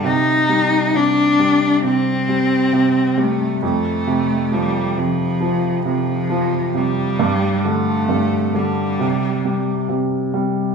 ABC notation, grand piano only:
X:1
M:4/4
L:1/8
Q:1/4=67
K:Cdor
V:1 name="Grand piano" clef=bass
C, G, C, G, C, G, C, G, | F,, C, F, C, F, C, F, C, | G,, D, G,, D, C, G, C, G, |]